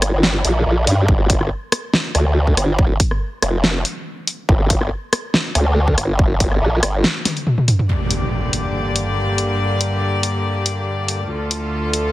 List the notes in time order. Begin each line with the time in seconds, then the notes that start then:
Already playing: G1
0.02 cross-stick, closed hi-hat
0.13 G1
0.23 snare
0.45 A#1, closed hi-hat
0.66 A#1
0.87 G2, closed hi-hat
1.08 G1, kick
1.30 kick, closed hi-hat
1.41 cross-stick
1.72 cross-stick, closed hi-hat
1.94 snare
2.15 D2, cross-stick, closed hi-hat
2.47 kick
2.57 G1, cross-stick, closed hi-hat
2.79 kick
3.00 kick, closed hi-hat
3.11 cross-stick
3.42 F1, cross-stick, closed hi-hat
3.64 snare
3.85 closed hi-hat
4.27 closed hi-hat
4.49 G1, kick
4.70 kick, closed hi-hat
4.81 cross-stick
5.13 cross-stick, closed hi-hat
5.34 snare
5.55 D2, cross-stick, closed hi-hat
5.88 kick
5.98 G1, cross-stick, closed hi-hat
6.19 kick
6.40 G1, kick, closed hi-hat
6.51 cross-stick
6.62 A#1
6.83 G1, cross-stick, closed hi-hat
7.04 snare
7.25 snare, closed hi-hat, high tom
7.37 closed hi-hat
7.47 mid tom
7.58 mid tom
7.68 closed hi-hat, mid tom
7.79 mid tom
7.89 G2 D3 A#3 G4 D5, impact
8.11 closed hi-hat
8.53 closed hi-hat
8.96 closed hi-hat
9.38 closed hi-hat
9.81 closed hi-hat
10.23 closed hi-hat
10.66 closed hi-hat
11.08 closed hi-hat
11.30 D2 D3 A3 F4 A4
11.51 closed hi-hat
11.93 closed hi-hat